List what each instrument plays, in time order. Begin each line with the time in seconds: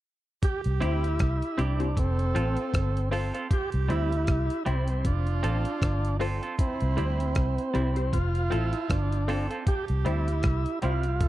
0.43 tenor saxophone G4, tonewheel organ G4, kick, closed hi-hat
0.64 fingered electric bass C2, closed hi-hat
0.80 fingered electric bass D2, synth stab C4 E4 G4 C5, clean electric guitar C4 E4 G4, tonewheel organ E4, closed hi-hat
1.04 closed hi-hat
1.19 fingered electric bass C2, kick, cross-stick, closed hi-hat
1.42 closed hi-hat
1.57 fingered electric bass C2, synth stab C4 E4 G4 C5, clean electric guitar C4 E4 G4, tonewheel organ D4, closed hi-hat
1.80 synth stab C4 E4 G4 C5, closed hi-hat
1.96 fingered electric bass F1, tonewheel organ C4, tenor saxophone A4, kick, closed hi-hat
2.19 closed hi-hat
2.34 fingered electric bass A1, synth stab C4 F4 A4 C5, clean electric guitar C4 F4 A4, closed hi-hat
2.57 closed hi-hat
2.74 fingered electric bass G1, kick, cross-stick, closed hi-hat
2.97 closed hi-hat
3.11 synth stab C4 F4 A4 C5, clean electric guitar C4 F4 A4, open hi-hat
3.34 clean electric guitar C4 F4 A4, synth stab A4 C5, closed hi-hat
3.51 tenor saxophone G4, tonewheel organ G4, kick, closed hi-hat
3.72 fingered electric bass C2, closed hi-hat
3.89 fingered electric bass D2, clean electric guitar G3 C4 E4, synth stab C4 E4 G4 C5, tonewheel organ E4, closed hi-hat
4.12 closed hi-hat
4.27 fingered electric bass C2, kick, cross-stick, closed hi-hat
4.50 closed hi-hat
4.65 fingered electric bass C2, clean electric guitar G3 C4 E4, synth stab C4 E4 G4 C5, tonewheel organ C4, closed hi-hat
4.88 closed hi-hat
5.05 fingered electric bass F1, tonewheel organ D4, tenor saxophone F4, kick, closed hi-hat
5.27 closed hi-hat
5.42 fingered electric bass A1, synth stab C4 F4 A4 C5, clean electric guitar C4 F4 A4, closed hi-hat
5.65 closed hi-hat
5.82 fingered electric bass G1, kick, cross-stick, closed hi-hat
6.05 closed hi-hat
6.19 synth stab C4 F4 A4 C5, clean electric guitar C4 F4 A4, open hi-hat
6.43 clean electric guitar C4 F4 A4, closed hi-hat
6.59 tonewheel organ C4, tenor saxophone E4, kick, closed hi-hat
6.80 fingered electric bass C2, closed hi-hat
6.96 fingered electric bass D2, clean electric guitar G3 C4 E4, synth stab C4 E4 G4 C5, closed hi-hat
7.20 closed hi-hat
7.35 fingered electric bass C2, kick, cross-stick, closed hi-hat
7.58 closed hi-hat
7.74 fingered electric bass C2, clean electric guitar G3 C4 E4, synth stab C4 E4 G4 C5, closed hi-hat
7.95 synth stab C4 E4 G4 C5, closed hi-hat
8.13 fingered electric bass F1, tenor saxophone F4, tonewheel organ F4, kick, closed hi-hat
8.35 closed hi-hat
8.50 fingered electric bass A1, synth stab C4 F4 A4 C5, clean electric guitar C4 F4 A4, tonewheel organ E4, closed hi-hat
8.73 closed hi-hat
8.90 fingered electric bass G1, tonewheel organ D4, kick, cross-stick, closed hi-hat
9.12 closed hi-hat
9.27 synth stab C4 F4 A4 C5, clean electric guitar C4 F4 A4, open hi-hat
9.50 clean electric guitar C4 F4 A4, synth stab A4 C5, closed hi-hat
9.67 tenor saxophone G4, tonewheel organ G4, kick, closed hi-hat
9.88 fingered electric bass C2, closed hi-hat
10.05 fingered electric bass D2, clean electric guitar G3 C4 E4, synth stab C4 E4 G4 C5, tonewheel organ E4, closed hi-hat
10.28 closed hi-hat
10.43 fingered electric bass C2, kick, cross-stick, closed hi-hat
10.66 closed hi-hat
10.82 fingered electric bass C2, clean electric guitar G3 C4 E4, synth stab C4 E4 G4 C5, tonewheel organ F4, closed hi-hat
11.03 closed hi-hat
11.20 fingered electric bass F1, tenor saxophone A4, kick, closed hi-hat